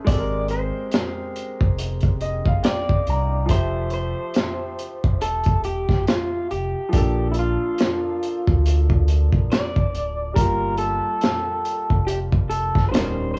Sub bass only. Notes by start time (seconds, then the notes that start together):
0.07 G#1
1.61 F1
2.46 G1
3.08 C2
3.50 F1
5.05 E1
5.89 G1
6.51 F1
6.94 A#1
8.48 D2
9.33 A#1
9.94 D1
10.37 G1
11.91 F1
12.75 G1
12.94 D#1